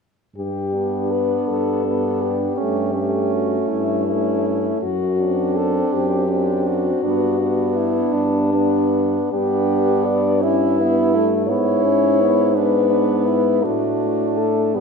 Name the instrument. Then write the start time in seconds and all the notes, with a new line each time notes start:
french horn
0.36 G2 G4
0.73 B3 D4
1.12 B4
1.48 G2 A4
1.84 B3 D4
2.23 G4
2.57 G2 A3 C#4
2.94 A3 C#4
3.34 F#4
3.70 G2 E4
4.07 A3 C#4
4.83 F#2 F#4
5.20 C4 D4
5.57 A4
5.94 F#2 G4
6.28 C4 D4
6.67 F#4
7.03 G2 B3 D4
7.40 B3 D4
7.77 E4
8.14 G2 D4
8.53 B3 D4
9.32 G2 B3 D4 G4
10.05 D5
10.42 C#4 E4
10.79 B3
11.15 A3
11.47 G#2 B3 E4 C#5
11.84 C#4
12.20 B3
12.55 B3 D4 B4
12.90 D4
13.27 E4
13.64 A2 A3 D4 F#4
14.38 A4
14.74 A2 G3 B3 G4